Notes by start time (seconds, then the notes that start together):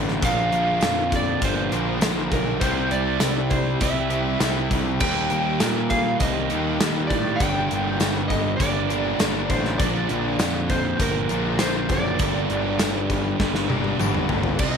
Already playing: A1 G2 D3 G3 A#3 D4 A#4
0.08 snare
0.22 A#1 A#2 D3 F3 A#3 D4 A#4 F5, kick, closed hi-hat
0.52 A#1, closed hi-hat
0.81 F2, snare, closed hi-hat, tambourine
0.83 tambourine
1.12 D5, kick, closed hi-hat
1.42 G1 A#2 D3 F3 A#3 D4 C5, kick, closed hi-hat
1.72 A#1 A#2 D3 F3 A#3 D4 A#4, closed hi-hat
2.01 A#1 A#2 D3 F3 A#3 D4 A#4, snare, closed hi-hat, tambourine
2.31 B1 A#4, kick, closed hi-hat
2.60 C2 C3 G3 C4 E4 G4 C5, kick, closed hi-hat
2.91 C2 D5, closed hi-hat
3.20 C2, snare, closed hi-hat, tambourine
3.50 C5, kick, closed hi-hat
3.81 C2 C3 G3 C4 E4 E5, kick, closed hi-hat
4.10 C3 G3 C4 E4 G4, closed hi-hat
4.39 C2 C3 G3 C4 E4 G4, snare, closed hi-hat, tambourine
4.71 C2, kick, closed hi-hat
5.00 D#2 D#3 G3 A#3 D#4 G4 G5, kick, crash
5.30 D#2, closed hi-hat
5.60 A#2, snare, closed hi-hat, tambourine
5.90 F5, kick, closed hi-hat
6.19 C2 D#3 G3 A#3 D#4 D#5, kick, closed hi-hat
6.50 D#2 D#3 G3 A#3 D#4 G4, closed hi-hat
6.80 D#2 D#3 G3 A#3 D#4 G4, snare, closed hi-hat, tambourine
7.07 A2 D5, kick, closed hi-hat
7.36 G2 G5
7.40 G1 D3 G3 A#3 D4 A#4, kick, closed hi-hat
7.71 G1, closed hi-hat
8.00 G1, snare, closed hi-hat, tambourine
8.28 D#5, kick, closed hi-hat
8.57 G1 G2 D3 D5, kick, closed hi-hat
8.61 G3 A#3 D4
8.90 G2 D3 G3 A#3 D4 A#4, closed hi-hat
9.19 G1 G2 D3 G3 A#3 D4 A#4, snare, closed hi-hat, tambourine
9.50 A1 C5, kick, closed hi-hat
9.65 snare
9.78 A#1 A#2 D3 F3 A#3 D4 A#4 D5, kick, closed hi-hat
10.09 A#1, closed hi-hat
10.39 F2, snare, closed hi-hat, tambourine
10.70 C5, kick, closed hi-hat
10.98 G1 A#2 D3 F3 A#3 D4 A#4, kick, closed hi-hat
11.29 A#1 A#2 D3 F3 A#3 D4 A#4, closed hi-hat
11.59 A#1 A#2 D3 F3 A#3 D4 A#4 C5, snare, closed hi-hat, tambourine
11.89 F#1 D5, kick, closed hi-hat
12.19 G1 G2 D3 G3 A#3 D4 A#4, kick, closed hi-hat
12.50 G1, closed hi-hat
12.79 G1, snare, closed hi-hat, tambourine
13.10 kick, closed hi-hat
13.40 G1 G2 D3 G3 A#3 D4, kick, snare
13.55 snare
13.69 G2 D3 G3 A#3 D4 A#4, high tom
13.84 high tom
14.00 G1 G2 D3 G3 A#3 D4 A#4, mid tom, tambourine
14.15 mid tom
14.29 G1, floor tom
14.43 floor tom
14.59 C2 C3 D#5, kick, crash